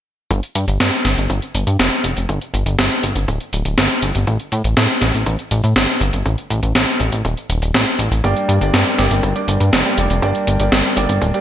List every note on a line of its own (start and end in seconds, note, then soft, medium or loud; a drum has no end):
0.31 0.41 G1 loud
0.31 kick loud
0.31 closed hi-hat soft
0.43 closed hi-hat soft
0.55 0.66 G2 medium
0.55 closed hi-hat medium
0.68 0.78 G1 medium
0.68 closed hi-hat medium
0.80 0.90 G2 loud
0.80 kick loud
0.80 snare loud
0.80 closed hi-hat medium
0.93 closed hi-hat soft
1.05 1.15 G1 medium
1.05 snare medium
1.05 closed hi-hat medium
1.17 1.28 G1 medium
1.17 closed hi-hat soft
1.30 1.40 G1 loud
1.30 kick loud
1.30 closed hi-hat medium
1.42 closed hi-hat soft
1.55 1.65 G1 medium
1.55 closed hi-hat medium
1.67 1.77 G2 medium
1.67 closed hi-hat medium
1.79 1.90 F1 loud
1.79 kick loud
1.79 snare loud
1.79 closed hi-hat medium
1.92 closed hi-hat soft
2.04 2.14 F1 medium
2.04 closed hi-hat medium
2.16 2.27 F1 medium
2.16 closed hi-hat medium
2.29 2.39 G1 loud
2.29 kick loud
2.29 closed hi-hat soft
2.41 closed hi-hat soft
2.54 2.64 G1 medium
2.54 closed hi-hat medium
2.66 2.76 G1 medium
2.66 closed hi-hat soft
2.79 2.89 G1 loud
2.79 kick loud
2.79 snare loud
2.79 closed hi-hat soft
2.91 closed hi-hat soft
3.03 3.14 G1 medium
3.03 kick medium
3.03 closed hi-hat medium
3.15 3.26 G1 medium
3.15 closed hi-hat soft
3.28 3.38 D1 loud
3.28 kick loud
3.28 closed hi-hat medium
3.40 closed hi-hat soft
3.53 3.63 D1 medium
3.53 closed hi-hat medium
3.65 3.76 D1 medium
3.65 closed hi-hat soft
3.78 3.88 G1 loud
3.78 kick loud
3.78 snare loud
3.78 closed hi-hat soft
3.90 closed hi-hat soft
4.02 4.13 G1 medium
4.02 closed hi-hat medium
4.15 4.25 G1 medium
4.15 closed hi-hat medium
4.27 4.38 A1 loud
4.27 kick loud
4.27 closed hi-hat soft
4.40 closed hi-hat soft
4.52 4.62 A2 medium
4.52 closed hi-hat medium
4.64 4.75 A1 medium
4.64 closed hi-hat soft
4.77 4.87 A2 loud
4.77 kick loud
4.77 snare loud
4.77 closed hi-hat soft
4.89 closed hi-hat soft
5.02 5.12 A1 medium
5.02 snare medium
5.02 closed hi-hat medium
5.14 5.24 A1 medium
5.14 closed hi-hat soft
5.26 5.37 A1 loud
5.26 kick loud
5.26 closed hi-hat soft
5.39 closed hi-hat soft
5.51 5.62 A1 medium
5.51 closed hi-hat medium
5.64 5.74 A2 medium
5.64 closed hi-hat soft
5.76 5.86 G1 loud
5.76 kick loud
5.76 snare loud
5.76 closed hi-hat soft
5.89 closed hi-hat soft
6.01 6.11 G1 medium
6.01 closed hi-hat medium
6.13 6.24 G1 medium
6.13 closed hi-hat medium
6.26 6.36 A1 loud
6.26 kick loud
6.26 closed hi-hat soft
6.38 closed hi-hat soft
6.50 6.61 A1 medium
6.50 closed hi-hat medium
6.63 6.73 A1 medium
6.63 closed hi-hat soft
6.75 6.85 A1 loud
6.75 kick loud
6.75 snare loud
6.75 closed hi-hat soft
6.88 closed hi-hat soft
7.00 7.10 A1 medium
7.00 kick medium
7.00 closed hi-hat medium
7.12 7.23 A1 medium
7.12 closed hi-hat soft
7.25 7.35 D#1 loud
7.25 kick loud
7.25 closed hi-hat soft
7.37 closed hi-hat soft
7.50 7.60 D#1 medium
7.50 closed hi-hat medium
7.62 7.72 D#1 medium
7.62 closed hi-hat soft
7.74 7.85 A1 loud
7.74 kick loud
7.74 snare loud
7.74 closed hi-hat soft
7.87 closed hi-hat soft
7.99 8.09 A1 medium
7.99 closed hi-hat medium
8.11 8.22 A1 medium
8.11 closed hi-hat medium
8.24 8.34 G1 loud
8.24 8.58 G2 medium
8.24 8.58 A#3 medium
8.24 8.58 D4 medium
8.24 8.58 G4 medium
8.24 8.58 D5 loud
8.24 kick loud
8.24 closed hi-hat soft
8.36 closed hi-hat soft
8.49 8.59 G2 medium
8.49 closed hi-hat medium
8.61 8.71 G1 medium
8.61 8.96 G2 medium
8.61 8.95 A#3 medium
8.61 8.96 D4 medium
8.61 8.95 G4 medium
8.61 8.95 D5 medium
8.61 closed hi-hat soft
8.74 8.84 G2 loud
8.74 kick loud
8.74 snare loud
8.74 closed hi-hat soft
8.86 closed hi-hat soft
8.98 9.09 G1 medium
8.98 9.33 G2 medium
8.98 9.33 A#3 medium
8.98 9.33 D4 medium
8.98 9.33 G4 medium
8.98 9.33 D5 medium
8.98 snare medium
8.98 closed hi-hat medium
9.11 9.21 G1 medium
9.11 closed hi-hat soft
9.23 9.33 G1 loud
9.23 kick loud
9.23 closed hi-hat soft
9.36 9.82 G2 medium
9.36 9.82 A#3 medium
9.36 9.82 D4 medium
9.36 9.82 G4 medium
9.36 9.82 D5 medium
9.36 closed hi-hat soft
9.48 9.58 G1 medium
9.48 closed hi-hat medium
9.60 9.71 G2 medium
9.60 closed hi-hat soft
9.73 9.83 F1 loud
9.73 kick loud
9.73 snare loud
9.73 closed hi-hat soft
9.85 10.19 G2 medium
9.85 10.19 A#3 medium
9.85 10.19 D4 medium
9.85 10.19 G4 medium
9.85 10.19 D5 medium
9.85 closed hi-hat soft
9.98 10.08 F1 medium
9.98 closed hi-hat medium
10.10 10.20 F1 medium
10.10 closed hi-hat soft
10.22 10.33 G1 loud
10.22 10.57 G2 medium
10.22 10.57 A#3 medium
10.22 10.57 D4 medium
10.22 10.57 G4 medium
10.22 10.57 D5 loud
10.22 kick loud
10.22 closed hi-hat soft
10.35 closed hi-hat soft
10.47 10.57 G1 medium
10.47 closed hi-hat medium
10.60 10.70 G1 medium
10.60 10.94 G2 medium
10.60 10.94 A#3 medium
10.60 10.94 D4 medium
10.60 10.94 G4 medium
10.60 10.94 D5 medium
10.60 closed hi-hat soft
10.72 10.82 G1 loud
10.72 kick loud
10.72 snare loud
10.72 closed hi-hat medium
10.85 closed hi-hat soft
10.97 11.07 G1 medium
10.97 11.31 G2 medium
10.97 11.31 A#3 medium
10.97 11.31 D4 medium
10.97 11.31 G4 medium
10.97 11.31 D5 loud
10.97 kick medium
10.97 closed hi-hat medium
11.09 11.19 G1 medium
11.09 closed hi-hat soft
11.22 11.32 D1 loud
11.22 kick loud
11.22 closed hi-hat medium
11.34 11.41 G2 medium
11.34 11.41 A#3 medium
11.34 11.41 D4 medium
11.34 11.41 G4 medium
11.34 11.41 D5 medium
11.34 closed hi-hat soft